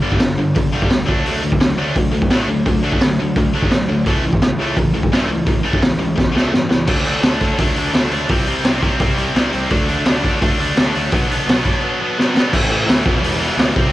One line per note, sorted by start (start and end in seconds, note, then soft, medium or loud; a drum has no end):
0.02 0.19 G1 medium
0.02 0.19 G2 medium
0.02 0.19 D3 loud
0.02 0.19 G3 loud
0.12 kick medium
0.19 0.37 G1 medium
0.19 0.36 G2 medium
0.19 0.36 D3 medium
0.19 snare loud
0.19 open hi-hat soft
0.38 0.54 G1 medium
0.38 0.54 G2 medium
0.38 0.54 D3 medium
0.55 0.72 G1 medium
0.55 0.72 G2 medium
0.55 0.72 D3 medium
0.55 kick loud
0.55 open hi-hat medium
0.74 0.90 G1 medium
0.74 0.90 G2 medium
0.74 0.90 D3 medium
0.74 0.90 G3 medium
0.82 kick medium
0.90 1.07 D2 medium
0.90 1.07 G2 medium
0.90 1.07 D3 medium
0.90 snare medium
0.90 open hi-hat soft
1.07 1.25 D2 medium
1.07 1.25 D3 medium
1.07 1.25 F#3 medium
1.07 1.25 A3 medium
1.07 1.24 D4 loud
1.07 kick loud
1.25 1.42 D2 medium
1.25 1.43 D3 medium
1.25 1.43 F#3 medium
1.25 1.43 A3 medium
1.25 1.42 D4 loud
1.25 open hi-hat medium
1.42 1.60 D2 medium
1.42 1.60 D3 medium
1.42 1.60 F#3 medium
1.42 1.58 A3 medium
1.52 kick medium
1.60 1.76 D2 medium
1.60 1.76 D3 medium
1.60 1.77 F#3 medium
1.60 1.76 A3 medium
1.60 snare loud
1.60 open hi-hat medium
1.77 1.94 D2 medium
1.77 1.94 D3 medium
1.77 1.95 F#3 loud
1.77 1.95 A3 medium
1.77 1.95 D4 medium
1.96 2.10 D2 medium
1.96 2.12 D3 medium
1.96 2.12 F#3 medium
1.96 2.11 A3 medium
1.96 kick loud
1.96 open hi-hat medium
2.10 2.27 D2 medium
2.10 2.29 D3 medium
2.10 2.29 F#3 medium
2.10 2.28 A3 medium
2.22 kick medium
2.28 2.46 A2 medium
2.28 2.47 D3 medium
2.28 snare medium
2.28 open hi-hat medium
2.32 2.48 F#3 medium
2.32 2.48 A3 loud
2.32 2.48 D4 medium
2.47 2.64 D2 medium
2.47 2.64 D3 medium
2.47 2.65 F#3 medium
2.47 2.64 A3 medium
2.66 2.81 D2 medium
2.66 2.81 D3 medium
2.66 2.82 F#3 medium
2.66 2.82 A3 medium
2.66 kick loud
2.66 open hi-hat medium
2.82 2.98 D2 medium
2.82 3.00 D3 medium
2.82 3.01 F#3 loud
2.82 3.00 D4 loud
2.86 3.01 A3 medium
2.92 kick medium
2.98 3.15 D2 medium
2.98 3.17 D3 medium
2.98 3.17 A3 medium
2.98 snare loud
2.98 open hi-hat medium
3.03 3.18 F#3 medium
3.16 3.34 D2 medium
3.16 3.35 F#3 medium
3.20 3.35 D3 medium
3.20 3.35 A3 medium
3.36 3.52 D2 medium
3.36 3.52 D3 medium
3.36 3.53 F#3 medium
3.36 3.53 A3 medium
3.36 kick loud
3.36 open hi-hat medium
3.53 3.70 D2 medium
3.53 3.71 D3 medium
3.53 3.71 F#3 medium
3.53 3.71 A3 medium
3.53 3.71 D4 loud
3.63 kick medium
3.71 3.87 A2 medium
3.71 3.87 D3 medium
3.71 3.88 F#3 medium
3.71 3.88 A3 medium
3.71 snare medium
3.71 open hi-hat soft
3.87 4.05 D2 medium
3.87 4.05 D3 medium
3.87 4.05 F#3 medium
3.87 4.05 A3 medium
4.06 4.21 C#2 medium
4.06 4.23 A2 medium
4.06 4.23 C#3 medium
4.06 4.23 E3 medium
4.06 4.24 A3 medium
4.06 kick loud
4.06 open hi-hat soft
4.21 4.38 C#2 medium
4.21 4.40 A2 medium
4.21 4.40 C#3 medium
4.21 4.40 E3 medium
4.33 kick medium
4.39 4.56 C#2 medium
4.39 4.57 A2 medium
4.39 4.58 C#3 medium
4.39 4.58 E3 medium
4.39 snare loud
4.39 open hi-hat medium
4.57 4.75 C#2 loud
4.57 4.75 A2 medium
4.57 4.76 C#3 medium
4.57 4.76 E3 medium
4.57 4.76 A3 loud
4.76 4.93 C#2 medium
4.76 4.92 A2 medium
4.76 4.93 C#3 medium
4.76 4.93 E3 medium
4.76 kick loud
4.76 open hi-hat medium
4.94 5.10 C#2 medium
4.94 5.10 A2 medium
4.94 5.10 C#3 medium
4.94 5.10 E3 medium
5.03 kick medium
5.11 5.28 G2 medium
5.11 5.28 A2 medium
5.11 5.29 C#3 loud
5.11 5.29 E3 loud
5.11 5.29 A3 loud
5.11 snare medium
5.11 open hi-hat soft
5.28 5.46 C#2 medium
5.28 5.45 A2 medium
5.28 5.45 C#3 medium
5.28 5.46 E3 medium
5.46 5.62 C#2 medium
5.46 5.62 A2 medium
5.46 5.63 C#3 medium
5.46 5.63 E3 medium
5.46 kick loud
5.46 open hi-hat medium
5.62 5.80 C#2 medium
5.62 5.80 A2 medium
5.62 5.81 C#3 medium
5.62 5.81 E3 medium
5.62 5.82 A3 loud
5.73 kick medium
5.81 5.97 C#2 medium
5.81 5.98 A2 medium
5.81 5.97 C#3 medium
5.81 5.98 E3 medium
5.81 snare loud
5.81 open hi-hat medium
5.98 6.16 C#2 medium
5.98 6.15 A2 medium
5.98 6.15 C#3 medium
5.98 6.15 E3 medium
6.16 6.34 C#2 medium
6.16 6.31 A2 medium
6.16 6.33 C#3 medium
6.16 6.33 E3 medium
6.16 kick loud
6.16 snare medium
6.32 6.51 C#2 medium
6.32 6.50 A2 medium
6.32 6.51 C#3 medium
6.32 6.51 E3 medium
6.32 6.52 A3 medium
6.36 snare medium
6.51 6.70 G2 medium
6.51 6.68 A2 medium
6.51 6.68 C#3 medium
6.51 6.68 E3 medium
6.51 snare medium
6.70 6.87 C#2 medium
6.70 6.86 A2 medium
6.70 6.86 C#3 medium
6.70 6.86 E3 medium
6.70 snare medium
6.87 7.15 D2 medium
6.87 7.06 D3 loud
6.87 7.06 F#3 medium
6.87 7.06 A3 medium
6.87 7.07 D4 loud
6.87 kick loud
6.87 crash loud
7.05 7.23 D3 medium
7.05 7.23 F#3 medium
7.05 7.24 A3 loud
7.05 7.24 D4 loud
7.05 open hi-hat medium
7.23 7.50 D2 medium
7.23 7.40 D3 medium
7.23 7.41 F#3 medium
7.23 7.41 A3 medium
7.23 7.42 D4 medium
7.23 snare loud
7.23 open hi-hat medium
7.41 7.58 D3 medium
7.41 7.59 F#3 medium
7.41 7.59 A3 medium
7.41 7.59 D4 medium
7.41 kick medium
7.41 open hi-hat medium
7.58 7.72 D2 medium
7.58 7.76 D3 medium
7.58 7.76 F#3 medium
7.58 7.77 A3 medium
7.58 7.77 D4 loud
7.58 kick loud
7.58 open hi-hat medium
7.76 7.89 D2 medium
7.76 7.93 D3 medium
7.76 7.93 F#3 medium
7.76 7.94 A3 medium
7.76 7.94 D4 medium
7.76 open hi-hat medium
7.94 8.07 D2 medium
7.94 8.11 D3 medium
7.94 8.11 F#3 medium
7.94 8.12 A3 medium
7.94 8.12 D4 medium
7.94 snare loud
7.94 open hi-hat medium
8.10 8.24 D2 medium
8.10 8.28 D3 medium
8.10 8.29 F#3 medium
8.10 8.29 A3 medium
8.10 8.29 D4 medium
8.10 open hi-hat medium
8.29 8.55 C2 medium
8.29 8.46 C3 loud
8.29 8.47 G3 medium
8.29 8.47 C4 medium
8.29 8.47 E4 loud
8.29 kick loud
8.29 open hi-hat medium
8.47 8.63 C3 medium
8.47 8.63 G3 loud
8.47 8.63 C4 medium
8.47 8.63 E4 loud
8.47 open hi-hat medium
8.64 8.91 C2 medium
8.64 8.81 C3 medium
8.64 8.81 G3 medium
8.64 8.82 C4 loud
8.64 8.82 E4 medium
8.64 snare loud
8.64 open hi-hat medium
8.82 9.00 C3 medium
8.82 9.00 G3 medium
8.82 9.00 C4 medium
8.82 9.01 E4 loud
8.82 kick medium
8.82 open hi-hat medium
9.00 9.26 C2 medium
9.00 9.17 C3 loud
9.00 9.17 G3 medium
9.00 9.18 C4 loud
9.00 9.18 E4 medium
9.00 kick loud
9.00 open hi-hat medium
9.18 9.34 C3 medium
9.18 9.35 G3 medium
9.18 9.35 C4 medium
9.18 9.35 E4 medium
9.18 open hi-hat medium
9.35 9.48 C2 medium
9.35 9.51 C3 medium
9.35 9.52 G3 loud
9.35 9.52 C4 loud
9.35 9.53 E4 loud
9.35 snare medium
9.35 open hi-hat medium
9.53 9.66 C2 medium
9.53 9.69 C3 medium
9.53 9.70 G3 medium
9.53 9.70 C4 medium
9.53 9.70 E4 medium
9.53 open hi-hat medium
9.70 9.97 D2 medium
9.70 9.88 D3 medium
9.70 9.89 F#3 loud
9.70 9.89 A3 loud
9.70 9.90 D4 loud
9.70 kick loud
9.70 open hi-hat medium
9.88 10.05 D3 medium
9.88 10.07 F#3 medium
9.88 10.06 A3 loud
9.88 10.07 D4 medium
9.88 open hi-hat medium
10.05 10.32 D2 medium
10.05 10.24 D3 medium
10.05 10.25 F#3 medium
10.05 10.25 A3 medium
10.05 10.25 D4 loud
10.05 snare loud
10.05 open hi-hat medium
10.24 10.41 D3 medium
10.24 10.41 F#3 medium
10.24 10.42 A3 medium
10.24 10.43 D4 medium
10.24 kick medium
10.24 open hi-hat soft
10.41 10.54 D2 medium
10.41 10.59 D3 medium
10.41 10.59 F#3 medium
10.41 10.59 A3 loud
10.41 10.60 D4 loud
10.41 kick loud
10.41 open hi-hat medium
10.59 10.72 D2 medium
10.59 10.77 D3 medium
10.59 10.77 F#3 medium
10.59 10.78 A3 medium
10.59 10.78 D4 medium
10.59 open hi-hat medium
10.77 10.90 D2 medium
10.77 10.93 D3 medium
10.77 10.94 F#3 medium
10.77 10.94 A3 medium
10.77 10.94 D4 loud
10.77 snare loud
10.77 open hi-hat medium
10.94 11.08 D2 medium
10.94 11.11 D3 medium
10.94 11.11 F#3 medium
10.94 11.11 A3 medium
10.94 11.11 D4 medium
10.94 open hi-hat medium
11.12 11.39 B1 medium
11.12 11.29 B2 medium
11.12 11.29 F#3 medium
11.12 11.30 B3 loud
11.12 11.30 D4 loud
11.12 kick loud
11.12 open hi-hat medium
11.30 11.46 B2 medium
11.30 11.46 F#3 medium
11.30 11.47 B3 medium
11.30 11.47 D4 loud
11.30 open hi-hat medium
11.47 11.74 B1 medium
11.47 11.64 B2 medium
11.47 11.64 F#3 medium
11.47 11.65 B3 medium
11.47 11.65 D4 loud
11.47 snare loud
11.47 open hi-hat medium
11.65 11.82 B2 medium
11.65 11.83 F#3 medium
11.65 11.83 B3 medium
11.65 11.83 D4 medium
11.65 kick medium
11.65 open hi-hat medium
11.83 11.99 B2 medium
11.83 12.00 F#3 medium
11.83 12.01 B3 loud
11.83 12.01 D4 loud
12.01 12.18 B2 medium
12.01 12.18 F#3 medium
12.01 12.19 B3 medium
12.01 12.19 D4 medium
12.19 12.36 B2 medium
12.19 12.36 F#3 medium
12.19 12.36 B3 medium
12.19 12.37 D4 loud
12.19 snare soft
12.37 12.53 B2 medium
12.37 12.53 F#3 medium
12.37 12.53 B3 medium
12.37 12.53 D4 medium
12.37 snare medium
12.53 12.66 A1 loud
12.53 12.70 A2 medium
12.53 12.71 E3 medium
12.53 12.71 A3 loud
12.53 12.71 C#4 loud
12.53 12.72 E4 medium
12.53 kick loud
12.53 crash loud
12.69 12.83 A1 medium
12.69 12.87 A2 medium
12.69 12.88 E3 medium
12.69 12.88 A3 medium
12.69 12.88 C#4 medium
12.69 12.89 E4 loud
12.86 13.00 D2 medium
12.86 13.05 A2 loud
12.86 13.05 E3 loud
12.86 13.05 A3 medium
12.86 13.05 C#4 loud
12.86 13.05 E4 loud
12.86 snare loud
12.86 open hi-hat medium
13.04 13.19 E1 medium
13.04 13.21 E2 loud
13.04 13.21 B2 medium
13.04 13.23 E3 medium
13.04 13.23 G3 medium
13.04 13.23 B3 medium
13.04 13.24 E4 loud
13.04 kick loud
13.21 13.49 E1 medium
13.21 13.39 E2 loud
13.21 13.40 B2 medium
13.21 13.40 E3 medium
13.21 13.41 G3 medium
13.21 13.41 B3 loud
13.21 13.41 E4 loud
13.21 open hi-hat medium
13.41 13.56 E2 medium
13.41 13.56 B2 medium
13.41 13.57 E3 medium
13.41 13.57 G3 medium
13.41 13.58 B3 medium
13.41 13.57 E4 medium
13.57 13.71 D2 medium
13.57 13.74 E2 medium
13.57 13.74 B2 loud
13.57 13.75 E3 loud
13.57 13.75 G3 loud
13.57 13.75 B3 loud
13.57 13.75 E4 loud
13.57 snare loud
13.57 open hi-hat medium
13.76 13.90 C2 medium
13.76 13.92 C3 medium
13.76 13.92 E3 medium
13.76 13.92 G3 loud
13.76 13.92 C4 loud
13.76 13.92 E4 loud
13.76 kick loud